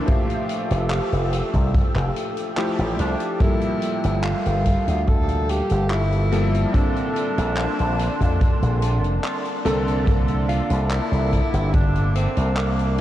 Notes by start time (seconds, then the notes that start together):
0.06 F3 A3 F4 G4 A4 E5 G5 E6, kick, closed hi-hat
0.30 closed hi-hat
0.49 closed hi-hat
0.71 F1, closed hi-hat
0.91 clap, closed hi-hat
1.13 F1, closed hi-hat
1.33 closed hi-hat
1.54 C2, kick, closed hi-hat
1.74 kick, closed hi-hat
1.95 F1, clap, closed hi-hat
2.16 closed hi-hat
2.37 closed hi-hat
2.57 F3 A3 E4 G4, clap, closed hi-hat
2.78 A1, closed hi-hat
2.99 C2 D4, closed hi-hat
3.20 closed hi-hat
3.40 F3 G3 A#3 E4 A4, kick, closed hi-hat
3.61 closed hi-hat
3.82 closed hi-hat
4.04 G1, closed hi-hat
4.23 F4, clap, closed hi-hat
4.46 G1, closed hi-hat
4.65 kick, closed hi-hat
4.88 D2, closed hi-hat
5.07 A4, kick, closed hi-hat
5.28 closed hi-hat
5.49 G4, closed hi-hat
5.70 G1, closed hi-hat
5.90 E4, clap, closed hi-hat
6.12 closed hi-hat
6.32 F3 G3 A#3 A4, closed hi-hat
6.54 closed hi-hat
6.73 D3 A#3 C4 D4 A4 D5 A5 C6, kick, closed hi-hat
6.96 closed hi-hat
7.16 closed hi-hat
7.38 A#1, closed hi-hat
7.57 clap, closed hi-hat
7.79 A#1, closed hi-hat
7.99 closed hi-hat
8.21 F2, kick, closed hi-hat
8.41 kick, closed hi-hat
8.62 A#1, closed hi-hat
8.82 closed hi-hat
9.04 F1, closed hi-hat
9.24 clap, closed hi-hat
9.45 closed hi-hat
9.65 C2 D3 A#3 C4 A4, closed hi-hat
9.88 closed hi-hat
10.05 D3 A#3 D4 A4 E5 D6, kick, closed hi-hat
10.28 closed hi-hat
10.49 F4, closed hi-hat
10.70 C2, closed hi-hat
10.91 E4, clap, closed hi-hat
11.12 C2, closed hi-hat
11.33 kick, closed hi-hat
11.54 G1, closed hi-hat
11.74 D4, kick, closed hi-hat
11.96 closed hi-hat
12.15 C4, closed hi-hat
12.37 C2, closed hi-hat
12.57 A#3, clap, closed hi-hat
12.79 closed hi-hat